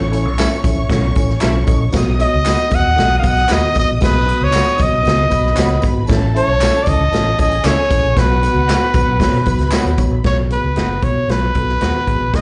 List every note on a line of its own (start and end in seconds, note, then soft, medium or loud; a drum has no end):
0.00 0.25 A1 loud
0.00 1.90 C#5 medium
0.00 1.90 C#6 medium
0.11 0.27 C#4 loud
0.11 0.28 E4 loud
0.11 0.28 A4 loud
0.11 0.28 C#5 loud
0.11 closed hi-hat medium
0.11 tambourine soft
0.25 0.45 B1 medium
0.38 0.47 C#4 medium
0.38 0.54 C#4 medium
0.38 0.54 E4 medium
0.38 0.48 E4 medium
0.38 0.54 A4 medium
0.38 0.48 A4 medium
0.38 0.54 E5 loud
0.38 snare loud
0.38 clap medium
0.38 closed hi-hat medium
0.38 tambourine medium
0.64 0.74 A1 medium
0.64 0.80 C#4 medium
0.64 0.80 E4 medium
0.64 0.80 A4 medium
0.64 0.89 E5 medium
0.64 kick loud
0.64 closed hi-hat medium
0.64 tambourine medium
0.77 0.87 A1 medium
0.89 1.09 B1 medium
0.89 1.06 C#4 medium
0.89 1.06 E4 medium
0.89 1.06 A4 medium
0.89 1.06 C#5 loud
0.89 1.14 F#5 medium
0.89 kick loud
0.89 snare loud
0.89 closed hi-hat medium
1.15 1.36 A1 medium
1.15 1.32 C#4 medium
1.15 1.32 E4 medium
1.15 1.32 A4 medium
1.15 1.32 C#5 medium
1.15 1.40 G#5 medium
1.15 kick medium
1.15 closed hi-hat medium
1.15 tambourine medium
1.29 snare soft
1.40 1.62 B1 medium
1.40 1.57 C#4 loud
1.40 1.51 C#4 medium
1.40 1.57 E4 medium
1.40 1.52 E4 medium
1.40 1.57 A4 medium
1.40 1.52 A4 medium
1.40 1.57 E5 loud
1.40 1.90 A5 medium
1.40 snare loud
1.40 clap medium
1.40 closed hi-hat medium
1.40 tambourine medium
1.67 1.88 A#1 medium
1.67 1.83 C#4 medium
1.67 1.83 E4 medium
1.67 1.83 A4 medium
1.67 1.83 D#5 loud
1.67 kick loud
1.67 closed hi-hat medium
1.67 tambourine soft
1.92 2.23 B1 loud
1.92 2.09 B3 loud
1.92 2.09 D#4 loud
1.92 2.09 F#4 loud
1.92 2.09 B4 loud
1.92 5.28 D#5 medium
1.92 5.28 D#6 medium
1.92 kick loud
1.92 snare loud
1.92 closed hi-hat medium
1.92 tambourine medium
2.19 2.35 B3 loud
2.19 2.35 D#4 medium
2.19 2.35 F#4 medium
2.19 2.35 C#5 loud
2.19 2.76 D#5 loud
2.19 closed hi-hat medium
2.19 tambourine soft
2.34 2.53 C#2 medium
2.45 2.61 B3 medium
2.45 2.55 D#4 medium
2.45 2.62 D#4 medium
2.45 2.61 F#4 medium
2.45 2.56 F#4 medium
2.45 2.61 B4 medium
2.45 2.56 B4 medium
2.45 snare medium
2.45 clap medium
2.45 closed hi-hat medium
2.45 tambourine medium
2.69 2.81 D#2 medium
2.69 2.86 B3 medium
2.69 2.87 D#4 medium
2.69 2.87 F#4 medium
2.69 2.87 B4 medium
2.69 kick loud
2.69 closed hi-hat medium
2.69 tambourine medium
2.75 3.18 F#5 loud
2.85 2.95 D#2 medium
2.96 3.18 B1 medium
2.96 3.13 B3 medium
2.96 3.13 D#4 medium
2.96 3.13 F#4 medium
2.96 3.13 A4 medium
2.96 snare loud
2.96 closed hi-hat medium
3.19 3.39 B3 medium
3.19 3.39 D#4 medium
3.19 3.39 F#4 medium
3.19 3.29 F5 medium
3.23 3.44 B1 medium
3.23 3.39 B4 medium
3.23 kick medium
3.23 closed hi-hat medium
3.23 tambourine medium
3.27 3.54 F#5 loud
3.37 snare soft
3.37 closed hi-hat soft
3.48 3.61 D#2 medium
3.48 3.65 B3 medium
3.48 3.65 D#4 medium
3.48 3.59 D#4 medium
3.48 3.65 F#4 medium
3.48 3.60 F#4 loud
3.48 3.65 B4 medium
3.48 3.60 B4 medium
3.48 snare loud
3.48 clap medium
3.48 closed hi-hat medium
3.48 tambourine medium
3.53 3.77 D#5 medium
3.74 3.86 A1 medium
3.74 3.90 B3 medium
3.74 3.91 D#4 medium
3.74 3.90 F#4 medium
3.74 3.91 B4 medium
3.74 kick loud
3.74 closed hi-hat medium
3.74 tambourine soft
3.79 3.90 D#5 medium
3.91 4.00 A#1 medium
4.01 4.32 B1 medium
4.01 4.17 B3 medium
4.01 4.17 D#4 medium
4.01 4.17 F#4 medium
4.01 4.17 G#4 loud
4.01 4.45 B4 loud
4.01 kick loud
4.01 snare loud
4.01 closed hi-hat medium
4.01 tambourine medium
4.26 4.43 B3 loud
4.26 4.43 D#4 medium
4.26 4.43 F#4 medium
4.26 4.43 B4 loud
4.26 closed hi-hat medium
4.41 4.61 C#2 medium
4.41 4.84 C#5 medium
4.51 4.68 B3 medium
4.51 4.68 D#4 medium
4.51 4.63 D#4 medium
4.51 4.68 F#4 medium
4.51 4.63 F#4 medium
4.51 4.68 B4 medium
4.51 4.64 B4 medium
4.51 clap medium
4.51 closed hi-hat medium
4.51 tambourine medium
4.56 snare loud
4.77 4.90 B1 loud
4.77 4.94 B3 medium
4.77 4.94 D#4 medium
4.77 4.94 F#4 medium
4.77 4.94 B4 medium
4.77 kick loud
4.77 closed hi-hat medium
4.77 tambourine medium
4.82 5.85 D#5 medium
4.93 5.03 B1 medium
5.03 5.26 C#2 loud
5.03 5.20 B3 medium
5.03 5.20 D#4 medium
5.03 5.20 F#4 medium
5.03 5.20 B4 medium
5.03 closed hi-hat medium
5.03 tambourine soft
5.08 snare loud
5.29 5.52 B1 medium
5.29 5.46 B3 medium
5.29 5.46 D#4 medium
5.29 5.46 F#4 medium
5.29 5.46 B4 medium
5.29 6.08 B4 medium
5.29 6.08 B5 medium
5.29 kick medium
5.29 closed hi-hat medium
5.29 tambourine medium
5.46 snare soft
5.55 5.77 C#2 medium
5.55 5.72 B3 loud
5.55 5.72 D#4 loud
5.55 5.67 D#4 medium
5.55 5.72 F#4 loud
5.55 5.67 F#4 medium
5.55 5.72 C#5 loud
5.55 clap medium
5.55 closed hi-hat loud
5.55 tambourine medium
5.59 5.68 B4 medium
5.59 snare loud
5.82 6.03 G#1 medium
5.82 5.99 B3 medium
5.82 5.99 D#4 medium
5.82 5.99 F#4 medium
5.82 5.99 B4 loud
5.82 kick loud
5.82 closed hi-hat medium
5.82 tambourine soft
6.07 6.39 A1 loud
6.07 6.25 C#4 loud
6.07 6.25 E4 loud
6.07 6.25 A4 loud
6.07 7.38 A4 medium
6.07 6.25 C#5 loud
6.07 7.37 A5 medium
6.07 kick loud
6.07 snare loud
6.07 closed hi-hat medium
6.07 tambourine medium
6.34 6.51 C#4 loud
6.34 6.51 E4 medium
6.34 6.51 A4 medium
6.34 6.84 C#5 loud
6.34 6.51 E5 loud
6.34 closed hi-hat medium
6.48 6.68 B1 medium
6.60 6.77 C#4 medium
6.60 6.71 C#4 medium
6.60 6.76 E4 medium
6.60 6.71 E4 medium
6.60 6.76 A4 medium
6.60 6.72 A4 medium
6.60 snare loud
6.60 clap medium
6.60 closed hi-hat medium
6.60 tambourine loud
6.83 7.03 E4 medium
6.83 7.03 A4 medium
6.83 6.90 D5 medium
6.83 tambourine medium
6.87 6.97 C#2 medium
6.87 7.03 C#4 medium
6.87 7.03 D#5 medium
6.87 7.40 D#5 loud
6.87 kick loud
6.87 closed hi-hat medium
6.99 7.10 C#2 medium
7.12 7.33 A1 medium
7.12 7.29 C#4 medium
7.12 7.28 E4 medium
7.12 7.29 A4 medium
7.12 7.29 C#5 medium
7.12 snare loud
7.12 closed hi-hat medium
7.12 tambourine soft
7.38 7.59 A1 medium
7.38 7.55 C#4 medium
7.38 7.55 E4 medium
7.38 8.16 G#4 medium
7.38 7.55 A4 medium
7.38 7.55 C#5 medium
7.38 7.67 D#5 loud
7.38 8.16 G#5 medium
7.38 kick medium
7.38 closed hi-hat medium
7.38 tambourine medium
7.51 closed hi-hat soft
7.64 7.75 C#2 medium
7.64 7.80 C#4 medium
7.64 7.74 C#4 medium
7.64 7.80 E4 medium
7.64 7.75 E4 medium
7.64 7.81 A4 medium
7.64 7.75 A4 medium
7.64 7.80 C#5 loud
7.64 8.20 C#5 loud
7.64 snare loud
7.64 clap medium
7.64 closed hi-hat loud
7.64 tambourine medium
7.90 8.01 A1 medium
7.90 8.06 C#4 medium
7.90 8.07 E4 medium
7.90 8.07 A4 medium
7.90 8.06 B4 medium
7.90 kick loud
7.90 closed hi-hat medium
7.90 tambourine medium
8.03 8.14 A#1 medium
8.16 8.47 B1 loud
8.16 8.33 B3 medium
8.16 8.33 D#4 medium
8.16 9.18 F#4 medium
8.16 8.33 F#4 medium
8.16 8.33 B4 loud
8.16 10.00 B4 medium
8.16 9.19 F#5 medium
8.16 kick loud
8.16 snare loud
8.16 closed hi-hat loud
8.16 tambourine medium
8.43 8.59 B3 loud
8.43 8.59 D#4 medium
8.43 8.59 F#4 medium
8.43 8.59 B4 loud
8.43 closed hi-hat medium
8.43 tambourine soft
8.54 8.75 C#2 medium
8.68 8.84 B3 medium
8.68 8.78 D#4 medium
8.68 8.85 D#4 medium
8.68 8.85 F#4 medium
8.68 8.79 F#4 medium
8.68 8.85 B4 medium
8.68 8.79 B4 medium
8.68 snare loud
8.68 clap loud
8.68 closed hi-hat medium
8.68 tambourine medium
8.94 9.05 B1 medium
8.94 9.10 B3 medium
8.94 9.10 D#4 medium
8.94 9.10 F#4 medium
8.94 9.10 B4 loud
8.94 kick loud
8.94 closed hi-hat medium
8.94 tambourine medium
9.06 9.17 B1 medium
9.20 9.36 B3 medium
9.20 9.36 D#4 medium
9.20 9.36 F#4 medium
9.20 10.23 B4 medium
9.20 9.37 C#5 loud
9.20 10.23 B5 medium
9.20 kick medium
9.20 snare loud
9.20 closed hi-hat medium
9.20 tambourine soft
9.33 9.43 B2 loud
9.33 closed hi-hat medium
9.46 9.57 B1 medium
9.46 9.63 B3 medium
9.46 9.62 D#4 medium
9.46 9.63 F#4 medium
9.46 9.63 B4 loud
9.46 kick medium
9.46 closed hi-hat medium
9.46 tambourine medium
9.58 9.69 C#2 medium
9.58 snare soft
9.58 closed hi-hat soft
9.71 9.88 B3 loud
9.71 9.88 D#4 medium
9.71 9.82 D#4 medium
9.71 9.89 F#4 loud
9.71 9.83 F#4 medium
9.71 9.83 B4 medium
9.71 9.89 C#5 loud
9.71 snare loud
9.71 clap medium
9.71 closed hi-hat medium
9.71 tambourine medium
9.85 9.95 D#2 medium
9.98 10.08 A1 medium
9.98 10.14 B3 medium
9.98 10.15 D#4 medium
9.98 10.14 F#4 medium
9.98 10.15 C#5 loud
9.98 kick medium
9.98 closed hi-hat medium
9.98 tambourine soft
10.11 10.22 A#1 medium
10.24 10.55 B1 medium
10.24 10.40 B3 medium
10.24 10.40 D#4 medium
10.24 10.40 F#4 medium
10.24 10.40 B4 medium
10.24 10.38 C#5 medium
10.24 kick loud
10.24 snare loud
10.24 closed hi-hat medium
10.50 10.66 B3 medium
10.50 10.66 D#4 medium
10.50 10.66 F#4 medium
10.50 10.67 G#4 medium
10.50 11.05 B4 medium
10.50 closed hi-hat medium
10.63 10.73 C#2 medium
10.76 10.96 F#1 medium
10.76 10.93 B3 medium
10.76 10.86 D#4 medium
10.76 10.93 D#4 medium
10.76 10.93 F#4 medium
10.76 10.87 F#4 medium
10.76 10.93 G#4 medium
10.76 10.87 B4 medium
10.76 snare medium
10.76 closed hi-hat medium
11.02 11.23 B2 medium
11.02 11.19 B3 medium
11.02 11.19 D#4 medium
11.02 11.19 F#4 medium
11.02 11.19 B4 medium
11.02 11.32 C#5 medium
11.02 kick medium
11.02 closed hi-hat medium
11.28 11.49 B1 medium
11.28 11.44 B3 medium
11.28 11.45 D#4 medium
11.28 11.45 F#4 medium
11.28 11.45 B4 medium
11.28 12.37 B4 medium
11.28 snare loud
11.28 closed hi-hat medium
11.55 11.75 B1 medium
11.55 11.71 B3 medium
11.55 11.71 D#4 medium
11.55 11.71 F#4 medium
11.55 11.71 A4 loud
11.55 kick medium
11.55 closed hi-hat medium
11.69 snare soft
11.81 11.91 D#2 medium
11.81 11.97 B3 medium
11.81 11.91 D#4 medium
11.81 11.97 D#4 medium
11.81 11.91 F#4 medium
11.81 11.98 F#4 medium
11.81 11.97 G#4 medium
11.81 11.92 B4 medium
11.81 snare loud
11.81 closed hi-hat medium
12.07 12.18 A1 medium
12.07 12.23 B3 medium
12.07 12.23 D#4 medium
12.07 12.23 F#4 medium
12.07 12.23 G#4 medium
12.07 kick medium
12.07 closed hi-hat medium
12.21 12.31 A#1 medium
12.33 12.41 B1 medium
12.33 12.41 B3 medium
12.33 12.41 D#4 medium
12.33 12.41 F#4 medium
12.33 12.41 G#4 loud
12.33 12.41 D#5 loud
12.33 kick loud
12.33 snare loud
12.33 closed hi-hat medium